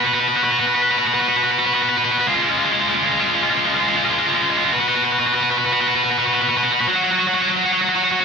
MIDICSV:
0, 0, Header, 1, 2, 480
1, 0, Start_track
1, 0, Tempo, 614754
1, 1773, Time_signature, 4, 2, 24, 8
1, 6440, End_track
2, 0, Start_track
2, 0, Title_t, "Distorted electric guitar"
2, 0, Program_c, 0, 30
2, 34, Note_on_c, 0, 66, 55
2, 48, Note_on_c, 0, 71, 69
2, 94, Note_off_c, 0, 66, 0
2, 99, Note_on_c, 0, 66, 63
2, 107, Note_off_c, 0, 71, 0
2, 110, Note_on_c, 0, 71, 88
2, 152, Note_off_c, 0, 66, 0
2, 155, Note_on_c, 0, 66, 56
2, 159, Note_off_c, 0, 71, 0
2, 162, Note_on_c, 0, 71, 72
2, 215, Note_off_c, 0, 66, 0
2, 219, Note_on_c, 0, 66, 69
2, 221, Note_off_c, 0, 71, 0
2, 224, Note_on_c, 0, 71, 89
2, 278, Note_off_c, 0, 66, 0
2, 282, Note_off_c, 0, 71, 0
2, 282, Note_on_c, 0, 66, 64
2, 285, Note_on_c, 0, 71, 74
2, 331, Note_off_c, 0, 66, 0
2, 334, Note_on_c, 0, 66, 70
2, 343, Note_off_c, 0, 71, 0
2, 346, Note_on_c, 0, 71, 92
2, 394, Note_off_c, 0, 66, 0
2, 397, Note_off_c, 0, 71, 0
2, 400, Note_on_c, 0, 71, 77
2, 403, Note_on_c, 0, 66, 66
2, 453, Note_off_c, 0, 66, 0
2, 456, Note_on_c, 0, 66, 70
2, 460, Note_off_c, 0, 71, 0
2, 469, Note_on_c, 0, 71, 88
2, 516, Note_off_c, 0, 66, 0
2, 521, Note_off_c, 0, 71, 0
2, 522, Note_on_c, 0, 66, 64
2, 524, Note_on_c, 0, 71, 74
2, 573, Note_off_c, 0, 66, 0
2, 576, Note_on_c, 0, 66, 71
2, 584, Note_off_c, 0, 71, 0
2, 588, Note_on_c, 0, 71, 95
2, 636, Note_off_c, 0, 66, 0
2, 642, Note_off_c, 0, 71, 0
2, 643, Note_on_c, 0, 66, 63
2, 645, Note_on_c, 0, 71, 84
2, 701, Note_off_c, 0, 66, 0
2, 704, Note_off_c, 0, 71, 0
2, 704, Note_on_c, 0, 66, 75
2, 712, Note_on_c, 0, 71, 89
2, 758, Note_off_c, 0, 66, 0
2, 761, Note_on_c, 0, 66, 65
2, 764, Note_off_c, 0, 71, 0
2, 767, Note_on_c, 0, 71, 81
2, 815, Note_off_c, 0, 66, 0
2, 818, Note_on_c, 0, 66, 72
2, 827, Note_off_c, 0, 71, 0
2, 835, Note_on_c, 0, 71, 90
2, 878, Note_off_c, 0, 66, 0
2, 884, Note_on_c, 0, 66, 60
2, 887, Note_off_c, 0, 71, 0
2, 890, Note_on_c, 0, 71, 82
2, 931, Note_off_c, 0, 66, 0
2, 934, Note_on_c, 0, 66, 74
2, 942, Note_off_c, 0, 71, 0
2, 945, Note_on_c, 0, 71, 92
2, 994, Note_off_c, 0, 66, 0
2, 998, Note_off_c, 0, 71, 0
2, 999, Note_on_c, 0, 66, 63
2, 1001, Note_on_c, 0, 71, 74
2, 1059, Note_off_c, 0, 66, 0
2, 1061, Note_off_c, 0, 71, 0
2, 1065, Note_on_c, 0, 66, 71
2, 1065, Note_on_c, 0, 71, 85
2, 1111, Note_off_c, 0, 66, 0
2, 1115, Note_on_c, 0, 66, 67
2, 1119, Note_off_c, 0, 71, 0
2, 1122, Note_on_c, 0, 71, 75
2, 1170, Note_off_c, 0, 66, 0
2, 1173, Note_on_c, 0, 66, 71
2, 1175, Note_off_c, 0, 71, 0
2, 1179, Note_on_c, 0, 71, 90
2, 1230, Note_off_c, 0, 66, 0
2, 1233, Note_on_c, 0, 66, 65
2, 1238, Note_off_c, 0, 71, 0
2, 1242, Note_on_c, 0, 71, 79
2, 1290, Note_off_c, 0, 66, 0
2, 1293, Note_on_c, 0, 66, 69
2, 1295, Note_off_c, 0, 71, 0
2, 1298, Note_on_c, 0, 71, 90
2, 1351, Note_off_c, 0, 71, 0
2, 1353, Note_off_c, 0, 66, 0
2, 1355, Note_on_c, 0, 71, 74
2, 1364, Note_on_c, 0, 66, 60
2, 1414, Note_off_c, 0, 71, 0
2, 1419, Note_on_c, 0, 71, 84
2, 1423, Note_off_c, 0, 66, 0
2, 1426, Note_on_c, 0, 66, 70
2, 1471, Note_off_c, 0, 66, 0
2, 1474, Note_off_c, 0, 71, 0
2, 1475, Note_on_c, 0, 66, 55
2, 1477, Note_on_c, 0, 71, 73
2, 1532, Note_off_c, 0, 66, 0
2, 1535, Note_on_c, 0, 66, 65
2, 1537, Note_off_c, 0, 71, 0
2, 1542, Note_on_c, 0, 71, 83
2, 1590, Note_off_c, 0, 66, 0
2, 1593, Note_on_c, 0, 66, 59
2, 1595, Note_off_c, 0, 71, 0
2, 1598, Note_on_c, 0, 71, 74
2, 1646, Note_off_c, 0, 66, 0
2, 1649, Note_on_c, 0, 66, 66
2, 1654, Note_off_c, 0, 71, 0
2, 1657, Note_on_c, 0, 71, 76
2, 1707, Note_off_c, 0, 66, 0
2, 1710, Note_on_c, 0, 66, 52
2, 1716, Note_off_c, 0, 71, 0
2, 1724, Note_on_c, 0, 71, 69
2, 1770, Note_off_c, 0, 66, 0
2, 1771, Note_on_c, 0, 56, 86
2, 1775, Note_off_c, 0, 71, 0
2, 1779, Note_on_c, 0, 65, 101
2, 1827, Note_off_c, 0, 56, 0
2, 1830, Note_on_c, 0, 56, 59
2, 1831, Note_off_c, 0, 65, 0
2, 1834, Note_on_c, 0, 65, 71
2, 1886, Note_off_c, 0, 56, 0
2, 1889, Note_on_c, 0, 56, 72
2, 1894, Note_off_c, 0, 65, 0
2, 1897, Note_on_c, 0, 65, 75
2, 1945, Note_off_c, 0, 65, 0
2, 1948, Note_on_c, 0, 65, 65
2, 1949, Note_off_c, 0, 56, 0
2, 1956, Note_on_c, 0, 56, 60
2, 2008, Note_off_c, 0, 65, 0
2, 2012, Note_off_c, 0, 56, 0
2, 2015, Note_on_c, 0, 56, 72
2, 2015, Note_on_c, 0, 65, 75
2, 2064, Note_off_c, 0, 56, 0
2, 2067, Note_on_c, 0, 56, 66
2, 2074, Note_off_c, 0, 65, 0
2, 2084, Note_on_c, 0, 65, 71
2, 2125, Note_off_c, 0, 56, 0
2, 2128, Note_on_c, 0, 56, 81
2, 2131, Note_off_c, 0, 65, 0
2, 2134, Note_on_c, 0, 65, 83
2, 2182, Note_off_c, 0, 56, 0
2, 2185, Note_on_c, 0, 56, 70
2, 2194, Note_off_c, 0, 65, 0
2, 2201, Note_on_c, 0, 65, 71
2, 2245, Note_off_c, 0, 56, 0
2, 2254, Note_off_c, 0, 65, 0
2, 2254, Note_on_c, 0, 56, 79
2, 2257, Note_on_c, 0, 65, 79
2, 2304, Note_off_c, 0, 56, 0
2, 2304, Note_off_c, 0, 65, 0
2, 2307, Note_on_c, 0, 56, 69
2, 2307, Note_on_c, 0, 65, 72
2, 2363, Note_off_c, 0, 65, 0
2, 2366, Note_on_c, 0, 65, 80
2, 2367, Note_off_c, 0, 56, 0
2, 2379, Note_on_c, 0, 56, 75
2, 2426, Note_off_c, 0, 65, 0
2, 2435, Note_on_c, 0, 65, 73
2, 2436, Note_off_c, 0, 56, 0
2, 2440, Note_on_c, 0, 56, 68
2, 2489, Note_off_c, 0, 56, 0
2, 2492, Note_on_c, 0, 56, 83
2, 2495, Note_off_c, 0, 65, 0
2, 2501, Note_on_c, 0, 65, 85
2, 2549, Note_off_c, 0, 56, 0
2, 2552, Note_on_c, 0, 56, 72
2, 2560, Note_off_c, 0, 65, 0
2, 2564, Note_on_c, 0, 65, 73
2, 2608, Note_off_c, 0, 65, 0
2, 2610, Note_off_c, 0, 56, 0
2, 2611, Note_on_c, 0, 65, 84
2, 2613, Note_on_c, 0, 56, 86
2, 2669, Note_off_c, 0, 56, 0
2, 2671, Note_off_c, 0, 65, 0
2, 2672, Note_on_c, 0, 56, 66
2, 2674, Note_on_c, 0, 65, 71
2, 2728, Note_off_c, 0, 56, 0
2, 2730, Note_off_c, 0, 65, 0
2, 2732, Note_on_c, 0, 56, 83
2, 2734, Note_on_c, 0, 65, 82
2, 2779, Note_off_c, 0, 56, 0
2, 2783, Note_on_c, 0, 56, 71
2, 2791, Note_off_c, 0, 65, 0
2, 2794, Note_on_c, 0, 65, 80
2, 2843, Note_off_c, 0, 56, 0
2, 2850, Note_on_c, 0, 56, 84
2, 2854, Note_off_c, 0, 65, 0
2, 2862, Note_on_c, 0, 65, 83
2, 2909, Note_off_c, 0, 56, 0
2, 2912, Note_on_c, 0, 56, 74
2, 2922, Note_off_c, 0, 65, 0
2, 2925, Note_on_c, 0, 65, 76
2, 2965, Note_off_c, 0, 56, 0
2, 2968, Note_on_c, 0, 56, 83
2, 2969, Note_off_c, 0, 65, 0
2, 2972, Note_on_c, 0, 65, 80
2, 3026, Note_off_c, 0, 56, 0
2, 3030, Note_on_c, 0, 56, 73
2, 3032, Note_off_c, 0, 65, 0
2, 3038, Note_on_c, 0, 65, 73
2, 3089, Note_off_c, 0, 56, 0
2, 3094, Note_off_c, 0, 65, 0
2, 3094, Note_on_c, 0, 56, 80
2, 3097, Note_on_c, 0, 65, 84
2, 3146, Note_off_c, 0, 56, 0
2, 3149, Note_on_c, 0, 56, 68
2, 3157, Note_off_c, 0, 65, 0
2, 3162, Note_on_c, 0, 65, 73
2, 3204, Note_off_c, 0, 56, 0
2, 3207, Note_on_c, 0, 56, 78
2, 3221, Note_off_c, 0, 65, 0
2, 3224, Note_on_c, 0, 65, 84
2, 3266, Note_off_c, 0, 56, 0
2, 3269, Note_on_c, 0, 56, 64
2, 3272, Note_off_c, 0, 65, 0
2, 3275, Note_on_c, 0, 65, 67
2, 3324, Note_off_c, 0, 65, 0
2, 3327, Note_on_c, 0, 65, 79
2, 3329, Note_off_c, 0, 56, 0
2, 3339, Note_on_c, 0, 56, 76
2, 3381, Note_off_c, 0, 56, 0
2, 3384, Note_on_c, 0, 56, 68
2, 3387, Note_off_c, 0, 65, 0
2, 3395, Note_on_c, 0, 65, 73
2, 3444, Note_off_c, 0, 56, 0
2, 3451, Note_on_c, 0, 56, 77
2, 3454, Note_off_c, 0, 65, 0
2, 3458, Note_on_c, 0, 65, 84
2, 3507, Note_off_c, 0, 56, 0
2, 3510, Note_on_c, 0, 56, 61
2, 3516, Note_off_c, 0, 65, 0
2, 3519, Note_on_c, 0, 65, 71
2, 3570, Note_off_c, 0, 56, 0
2, 3570, Note_off_c, 0, 65, 0
2, 3573, Note_on_c, 0, 65, 76
2, 3577, Note_on_c, 0, 56, 70
2, 3628, Note_off_c, 0, 65, 0
2, 3631, Note_on_c, 0, 65, 64
2, 3634, Note_off_c, 0, 56, 0
2, 3637, Note_on_c, 0, 56, 61
2, 3688, Note_on_c, 0, 66, 83
2, 3691, Note_off_c, 0, 65, 0
2, 3697, Note_off_c, 0, 56, 0
2, 3698, Note_on_c, 0, 71, 84
2, 3740, Note_off_c, 0, 66, 0
2, 3743, Note_on_c, 0, 66, 61
2, 3755, Note_off_c, 0, 71, 0
2, 3758, Note_on_c, 0, 71, 57
2, 3803, Note_off_c, 0, 66, 0
2, 3812, Note_off_c, 0, 71, 0
2, 3812, Note_on_c, 0, 66, 69
2, 3815, Note_on_c, 0, 71, 70
2, 3863, Note_off_c, 0, 66, 0
2, 3866, Note_on_c, 0, 66, 64
2, 3875, Note_off_c, 0, 71, 0
2, 3880, Note_on_c, 0, 71, 64
2, 3924, Note_off_c, 0, 66, 0
2, 3927, Note_on_c, 0, 66, 74
2, 3940, Note_off_c, 0, 71, 0
2, 3943, Note_on_c, 0, 71, 69
2, 3987, Note_off_c, 0, 66, 0
2, 3993, Note_on_c, 0, 66, 61
2, 3996, Note_off_c, 0, 71, 0
2, 3999, Note_on_c, 0, 71, 65
2, 4047, Note_off_c, 0, 66, 0
2, 4050, Note_on_c, 0, 66, 78
2, 4054, Note_off_c, 0, 71, 0
2, 4057, Note_on_c, 0, 71, 79
2, 4107, Note_off_c, 0, 66, 0
2, 4111, Note_on_c, 0, 66, 69
2, 4117, Note_off_c, 0, 71, 0
2, 4120, Note_on_c, 0, 71, 61
2, 4164, Note_off_c, 0, 66, 0
2, 4168, Note_on_c, 0, 66, 73
2, 4173, Note_off_c, 0, 71, 0
2, 4177, Note_on_c, 0, 71, 77
2, 4219, Note_off_c, 0, 66, 0
2, 4222, Note_on_c, 0, 66, 68
2, 4237, Note_off_c, 0, 71, 0
2, 4243, Note_on_c, 0, 71, 69
2, 4283, Note_off_c, 0, 66, 0
2, 4296, Note_on_c, 0, 66, 74
2, 4297, Note_off_c, 0, 71, 0
2, 4300, Note_on_c, 0, 71, 80
2, 4348, Note_off_c, 0, 66, 0
2, 4351, Note_on_c, 0, 66, 69
2, 4360, Note_off_c, 0, 71, 0
2, 4363, Note_on_c, 0, 71, 64
2, 4404, Note_off_c, 0, 66, 0
2, 4407, Note_on_c, 0, 66, 75
2, 4413, Note_off_c, 0, 71, 0
2, 4416, Note_on_c, 0, 71, 77
2, 4463, Note_off_c, 0, 66, 0
2, 4466, Note_on_c, 0, 66, 70
2, 4471, Note_off_c, 0, 71, 0
2, 4474, Note_on_c, 0, 71, 70
2, 4527, Note_off_c, 0, 66, 0
2, 4534, Note_off_c, 0, 71, 0
2, 4535, Note_on_c, 0, 66, 78
2, 4539, Note_on_c, 0, 71, 81
2, 4584, Note_off_c, 0, 66, 0
2, 4587, Note_on_c, 0, 66, 65
2, 4593, Note_off_c, 0, 71, 0
2, 4596, Note_on_c, 0, 71, 66
2, 4643, Note_off_c, 0, 66, 0
2, 4646, Note_on_c, 0, 66, 76
2, 4653, Note_off_c, 0, 71, 0
2, 4656, Note_on_c, 0, 71, 76
2, 4705, Note_off_c, 0, 66, 0
2, 4708, Note_on_c, 0, 66, 69
2, 4716, Note_off_c, 0, 71, 0
2, 4719, Note_on_c, 0, 71, 70
2, 4765, Note_off_c, 0, 66, 0
2, 4768, Note_on_c, 0, 66, 77
2, 4775, Note_off_c, 0, 71, 0
2, 4778, Note_on_c, 0, 71, 74
2, 4823, Note_off_c, 0, 66, 0
2, 4826, Note_on_c, 0, 66, 69
2, 4837, Note_off_c, 0, 71, 0
2, 4840, Note_on_c, 0, 71, 62
2, 4884, Note_off_c, 0, 66, 0
2, 4887, Note_on_c, 0, 66, 73
2, 4898, Note_off_c, 0, 71, 0
2, 4901, Note_on_c, 0, 71, 70
2, 4942, Note_off_c, 0, 66, 0
2, 4946, Note_on_c, 0, 66, 67
2, 4956, Note_off_c, 0, 71, 0
2, 4959, Note_on_c, 0, 71, 69
2, 5006, Note_off_c, 0, 66, 0
2, 5013, Note_off_c, 0, 71, 0
2, 5013, Note_on_c, 0, 66, 69
2, 5016, Note_on_c, 0, 71, 72
2, 5061, Note_off_c, 0, 66, 0
2, 5064, Note_on_c, 0, 66, 62
2, 5076, Note_off_c, 0, 71, 0
2, 5079, Note_on_c, 0, 71, 64
2, 5124, Note_off_c, 0, 66, 0
2, 5129, Note_on_c, 0, 66, 67
2, 5134, Note_off_c, 0, 71, 0
2, 5137, Note_on_c, 0, 71, 68
2, 5175, Note_off_c, 0, 66, 0
2, 5178, Note_on_c, 0, 66, 60
2, 5188, Note_off_c, 0, 71, 0
2, 5191, Note_on_c, 0, 71, 60
2, 5238, Note_off_c, 0, 66, 0
2, 5241, Note_on_c, 0, 66, 64
2, 5251, Note_off_c, 0, 71, 0
2, 5256, Note_on_c, 0, 71, 68
2, 5301, Note_off_c, 0, 66, 0
2, 5311, Note_off_c, 0, 71, 0
2, 5314, Note_on_c, 0, 66, 55
2, 5314, Note_on_c, 0, 71, 55
2, 5373, Note_on_c, 0, 54, 78
2, 5374, Note_off_c, 0, 66, 0
2, 5374, Note_off_c, 0, 71, 0
2, 5377, Note_on_c, 0, 66, 88
2, 5428, Note_off_c, 0, 66, 0
2, 5429, Note_off_c, 0, 54, 0
2, 5431, Note_on_c, 0, 66, 66
2, 5432, Note_on_c, 0, 54, 57
2, 5489, Note_off_c, 0, 54, 0
2, 5492, Note_off_c, 0, 66, 0
2, 5492, Note_on_c, 0, 54, 63
2, 5505, Note_on_c, 0, 66, 73
2, 5551, Note_off_c, 0, 54, 0
2, 5554, Note_on_c, 0, 54, 59
2, 5560, Note_off_c, 0, 66, 0
2, 5563, Note_on_c, 0, 66, 69
2, 5608, Note_off_c, 0, 54, 0
2, 5611, Note_on_c, 0, 54, 65
2, 5614, Note_off_c, 0, 66, 0
2, 5617, Note_on_c, 0, 66, 75
2, 5671, Note_off_c, 0, 54, 0
2, 5675, Note_on_c, 0, 54, 63
2, 5678, Note_off_c, 0, 66, 0
2, 5682, Note_on_c, 0, 66, 67
2, 5730, Note_off_c, 0, 54, 0
2, 5730, Note_off_c, 0, 66, 0
2, 5733, Note_on_c, 0, 54, 75
2, 5733, Note_on_c, 0, 66, 78
2, 5790, Note_off_c, 0, 54, 0
2, 5793, Note_off_c, 0, 66, 0
2, 5793, Note_on_c, 0, 54, 65
2, 5797, Note_on_c, 0, 66, 66
2, 5850, Note_off_c, 0, 54, 0
2, 5854, Note_on_c, 0, 54, 72
2, 5857, Note_off_c, 0, 66, 0
2, 5863, Note_on_c, 0, 66, 83
2, 5902, Note_off_c, 0, 54, 0
2, 5905, Note_on_c, 0, 54, 62
2, 5911, Note_off_c, 0, 66, 0
2, 5914, Note_on_c, 0, 66, 70
2, 5965, Note_off_c, 0, 54, 0
2, 5973, Note_on_c, 0, 54, 69
2, 5974, Note_off_c, 0, 66, 0
2, 5978, Note_on_c, 0, 66, 77
2, 6030, Note_off_c, 0, 66, 0
2, 6032, Note_off_c, 0, 54, 0
2, 6033, Note_on_c, 0, 66, 67
2, 6036, Note_on_c, 0, 54, 62
2, 6093, Note_off_c, 0, 66, 0
2, 6096, Note_off_c, 0, 54, 0
2, 6100, Note_on_c, 0, 54, 67
2, 6104, Note_on_c, 0, 66, 80
2, 6155, Note_off_c, 0, 54, 0
2, 6158, Note_on_c, 0, 54, 65
2, 6161, Note_off_c, 0, 66, 0
2, 6164, Note_on_c, 0, 66, 73
2, 6204, Note_off_c, 0, 54, 0
2, 6207, Note_on_c, 0, 54, 74
2, 6214, Note_off_c, 0, 66, 0
2, 6217, Note_on_c, 0, 66, 84
2, 6267, Note_off_c, 0, 54, 0
2, 6271, Note_on_c, 0, 54, 56
2, 6275, Note_off_c, 0, 66, 0
2, 6279, Note_on_c, 0, 66, 68
2, 6331, Note_off_c, 0, 54, 0
2, 6334, Note_on_c, 0, 54, 65
2, 6335, Note_off_c, 0, 66, 0
2, 6338, Note_on_c, 0, 66, 81
2, 6395, Note_off_c, 0, 54, 0
2, 6399, Note_off_c, 0, 66, 0
2, 6406, Note_on_c, 0, 54, 60
2, 6406, Note_on_c, 0, 66, 69
2, 6440, Note_off_c, 0, 54, 0
2, 6440, Note_off_c, 0, 66, 0
2, 6440, End_track
0, 0, End_of_file